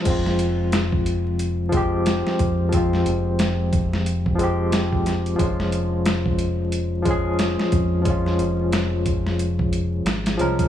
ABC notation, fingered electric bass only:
X:1
M:4/4
L:1/8
Q:"Swing 16ths" 1/4=90
K:Fm
V:1 name="Fingered electric bass" clef=bass
F,,,6 z F,,- | F,, F,,,6- F,,, | F,,,6 z F,,- | F,, F,,,4- F,,, A,,, C,, |]